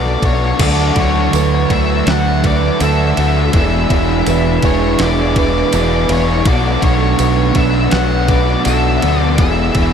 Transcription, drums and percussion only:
0.06 snare
0.23 kick, ride
0.59 kick, crash, ride
0.96 kick, ride
1.16 snare
1.33 ride, tambourine
1.70 kick, ride
2.07 snare, ride
2.44 kick, ride
2.80 ride, tambourine
3.17 ride
3.53 kick, ride
3.90 kick, ride
4.27 ride, tambourine
4.62 kick, ride
4.99 snare, ride
5.36 kick, ride
5.72 ride, tambourine
6.09 ride
6.46 kick, ride
6.82 kick, ride
7.19 ride, tambourine
7.55 kick, ride
7.91 snare, ride
8.28 kick, ride
8.65 ride, tambourine
9.02 ride
9.38 kick, ride
9.75 kick, ride

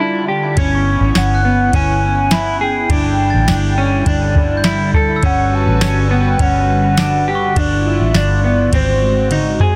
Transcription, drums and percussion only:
0.57 kick, ride
1.15 snare, ride, tambourine
1.73 kick, ride
2.31 snare, ride, tambourine
2.90 kick, ride
3.48 snare, ride, tambourine
4.06 kick, ride
4.35 kick
4.64 snare, ride, tambourine
4.94 kick
5.23 kick, ride
5.81 snare, ride, tambourine
6.39 kick, ride
6.97 snare, ride, tambourine
7.56 kick, ride
8.14 snare, ride, tambourine
8.73 kick, ride
9.31 high tom, ride
9.60 mid tom

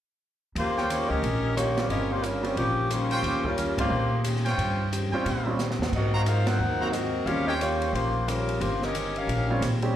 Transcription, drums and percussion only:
0.56 ride
0.78 snare
0.90 hi-hat pedal, ride
1.24 ride
1.57 cross-stick, hi-hat pedal, ride
1.77 snare, ride
1.90 ride
2.23 hi-hat pedal, ride
2.44 ride
2.57 ride
2.91 cross-stick, hi-hat pedal, ride
3.11 ride
3.24 ride
3.44 kick
3.58 hi-hat pedal, ride
3.78 kick, ride
4.24 cross-stick, hi-hat pedal, ride
4.36 snare
4.46 snare, ride
4.59 ride
4.93 hi-hat pedal, ride
5.26 ride
5.59 snare, hi-hat pedal
5.71 snare
5.82 snare
5.93 kick, crash
6.26 hi-hat pedal, ride
6.47 snare, ride
6.93 cross-stick, hi-hat pedal, ride
7.27 ride
7.61 hi-hat pedal, ride
7.82 ride
7.95 ride
8.28 cross-stick, hi-hat pedal, ride
8.49 ride
8.61 ride
8.82 snare
8.95 hi-hat pedal, ride
9.16 ride
9.29 ride
9.62 cross-stick, hi-hat pedal, ride
9.82 ride

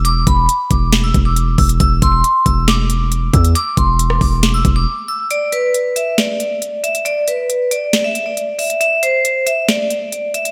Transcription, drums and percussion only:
0.05 closed hi-hat
0.27 kick, closed hi-hat
0.49 closed hi-hat
0.71 kick, closed hi-hat
0.92 snare, closed hi-hat
1.14 kick, closed hi-hat
1.36 closed hi-hat
1.58 kick, closed hi-hat, open hi-hat
1.69 closed hi-hat
1.80 kick, closed hi-hat
2.02 kick, closed hi-hat
2.24 closed hi-hat
2.46 kick, closed hi-hat
2.68 snare, closed hi-hat
2.90 closed hi-hat
3.12 closed hi-hat
3.34 kick, closed hi-hat
3.45 closed hi-hat
3.55 closed hi-hat
3.77 kick, closed hi-hat
3.99 closed hi-hat
4.10 cross-stick
4.21 kick, open hi-hat
4.43 snare, closed hi-hat
4.65 kick, closed hi-hat
5.30 closed hi-hat
5.52 closed hi-hat
5.74 closed hi-hat
5.96 closed hi-hat
6.18 snare, closed hi-hat
6.40 closed hi-hat
6.62 closed hi-hat
6.84 closed hi-hat
6.95 closed hi-hat
7.06 closed hi-hat
7.28 closed hi-hat
7.50 closed hi-hat
7.71 closed hi-hat
7.93 snare, closed hi-hat
8.15 closed hi-hat
8.37 closed hi-hat
8.59 closed hi-hat, open hi-hat
8.70 closed hi-hat
8.81 closed hi-hat
9.03 closed hi-hat
9.25 closed hi-hat
9.47 closed hi-hat
9.69 snare, closed hi-hat
9.90 closed hi-hat
10.12 closed hi-hat
10.34 closed hi-hat
10.45 closed hi-hat

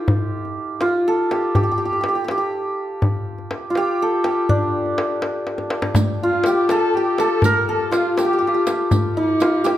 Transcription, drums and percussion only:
0.08 tombak dum
0.45 tombak ka
0.81 tombak tek
1.31 tombak tek
1.55 tombak dum
1.92 tombak ka
2.04 tombak tek
2.28 tombak tek
3.02 tombak dum
3.38 tombak ka
3.51 tombak tek
3.75 tombak tek
4.24 tombak tek
4.49 tombak dum
4.86 tombak ka
4.98 tombak tek
5.22 tombak tek
5.47 tombak tek
5.58 tombak ka
5.70 tombak tek
5.82 tombak ka
5.95 riq, tombak dum
6.33 tombak ka
6.44 riq, tombak tek
6.69 riq, tombak tek
6.94 tombak ka
7.18 riq, tombak tek
7.42 riq, tombak dum
7.80 tombak ka
7.92 riq, tombak tek
8.18 riq, tombak tek
8.42 tombak ka
8.67 riq, tombak tek
8.91 riq, tombak dum
9.29 tombak ka
9.40 riq, tombak tek
9.65 riq, tombak tek

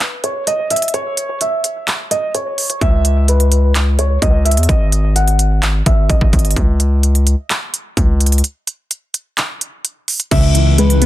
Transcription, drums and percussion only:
0.00 clap, closed hi-hat
0.24 closed hi-hat
0.47 closed hi-hat
0.70 closed hi-hat
0.76 closed hi-hat
0.82 closed hi-hat
0.88 closed hi-hat
0.94 closed hi-hat
1.17 closed hi-hat
1.41 closed hi-hat
1.64 closed hi-hat
1.88 clap, closed hi-hat
2.11 closed hi-hat
2.35 closed hi-hat
2.58 closed hi-hat, open hi-hat
2.70 closed hi-hat
2.81 kick, closed hi-hat
3.05 closed hi-hat
3.28 closed hi-hat
3.40 closed hi-hat
3.52 closed hi-hat
3.75 clap, closed hi-hat
3.99 closed hi-hat
4.22 kick, closed hi-hat
4.46 closed hi-hat
4.51 closed hi-hat
4.57 closed hi-hat
4.63 closed hi-hat
4.69 kick, closed hi-hat
4.92 closed hi-hat
5.16 closed hi-hat
5.28 closed hi-hat
5.39 closed hi-hat
5.63 clap, closed hi-hat
5.86 kick, closed hi-hat
6.10 kick, closed hi-hat
6.21 kick
6.33 kick, closed hi-hat
6.39 closed hi-hat
6.45 closed hi-hat
6.51 closed hi-hat
6.56 kick, closed hi-hat
6.80 closed hi-hat
7.03 closed hi-hat
7.15 closed hi-hat
7.27 closed hi-hat
7.50 clap, closed hi-hat
7.74 closed hi-hat
7.97 kick, closed hi-hat
8.21 closed hi-hat
8.26 closed hi-hat
8.32 closed hi-hat
8.38 closed hi-hat
8.44 closed hi-hat
8.67 closed hi-hat
8.91 closed hi-hat
9.14 closed hi-hat
9.38 clap, closed hi-hat
9.61 closed hi-hat
9.85 closed hi-hat
10.08 closed hi-hat, open hi-hat
10.20 closed hi-hat
10.31 kick, closed hi-hat, crash
10.55 closed hi-hat
10.78 closed hi-hat
10.90 closed hi-hat
11.02 closed hi-hat

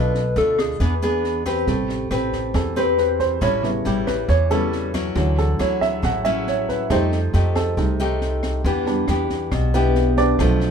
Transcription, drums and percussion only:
0.15 snare
0.37 snare
0.58 kick, cross-stick, snare
0.80 kick, snare
1.02 snare
1.24 snare
1.45 kick, cross-stick, snare
1.67 kick, snare
1.89 snare
2.11 cross-stick, snare
2.32 kick, snare
2.54 kick, cross-stick, snare
2.76 snare
2.98 snare
3.19 kick, snare
3.41 kick, cross-stick, snare
3.64 snare
3.85 snare
4.07 kick, cross-stick, snare
4.28 kick, snare
4.50 snare
4.73 snare
4.94 kick, cross-stick, snare
5.16 kick, snare
5.38 snare
5.60 cross-stick, snare
5.81 kick, snare
6.03 kick, cross-stick, snare
6.25 snare
6.47 snare
6.68 kick, snare
6.90 kick, cross-stick, snare
7.12 snare
7.34 snare
7.55 kick, cross-stick, snare
7.77 kick, snare
7.99 snare
8.21 snare
8.43 kick, cross-stick, snare
8.64 kick, snare
8.86 snare
9.08 cross-stick, snare
9.30 kick, snare
9.51 kick, cross-stick, snare
9.74 snare
9.95 snare
10.17 kick, snare
10.39 kick, cross-stick, snare
10.61 snare

